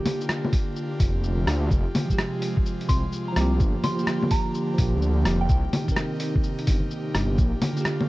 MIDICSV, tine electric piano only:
0, 0, Header, 1, 2, 480
1, 0, Start_track
1, 0, Tempo, 472441
1, 1735, Time_signature, 4, 2, 24, 8
1, 8217, End_track
2, 0, Start_track
2, 0, Title_t, "Tine electric piano"
2, 0, Program_c, 0, 4
2, 0, Note_on_c, 0, 50, 97
2, 0, Note_on_c, 0, 58, 86
2, 0, Note_on_c, 0, 67, 102
2, 155, Note_off_c, 0, 50, 0
2, 177, Note_off_c, 0, 58, 0
2, 198, Note_off_c, 0, 67, 0
2, 2088, Note_on_c, 0, 53, 78
2, 2129, Note_on_c, 0, 56, 70
2, 2167, Note_on_c, 0, 67, 84
2, 3367, Note_off_c, 0, 53, 0
2, 3379, Note_on_c, 0, 53, 98
2, 3394, Note_off_c, 0, 56, 0
2, 3413, Note_off_c, 0, 67, 0
2, 3418, Note_on_c, 0, 58, 86
2, 3460, Note_on_c, 0, 67, 107
2, 3996, Note_off_c, 0, 53, 0
2, 4014, Note_on_c, 0, 53, 84
2, 4015, Note_off_c, 0, 58, 0
2, 4037, Note_off_c, 0, 67, 0
2, 4054, Note_on_c, 0, 58, 75
2, 4096, Note_on_c, 0, 67, 93
2, 4803, Note_off_c, 0, 53, 0
2, 4815, Note_on_c, 0, 53, 91
2, 4837, Note_off_c, 0, 58, 0
2, 4858, Note_off_c, 0, 67, 0
2, 4860, Note_on_c, 0, 58, 81
2, 4898, Note_on_c, 0, 67, 99
2, 5545, Note_off_c, 0, 53, 0
2, 5567, Note_off_c, 0, 58, 0
2, 5587, Note_off_c, 0, 67, 0
2, 5933, Note_on_c, 0, 51, 79
2, 5974, Note_on_c, 0, 60, 72
2, 6014, Note_on_c, 0, 70, 88
2, 7216, Note_off_c, 0, 51, 0
2, 7237, Note_off_c, 0, 60, 0
2, 7256, Note_off_c, 0, 70, 0
2, 7851, Note_on_c, 0, 50, 88
2, 7892, Note_on_c, 0, 58, 76
2, 7934, Note_on_c, 0, 67, 97
2, 8217, Note_off_c, 0, 50, 0
2, 8217, Note_off_c, 0, 58, 0
2, 8217, Note_off_c, 0, 67, 0
2, 8217, End_track
0, 0, End_of_file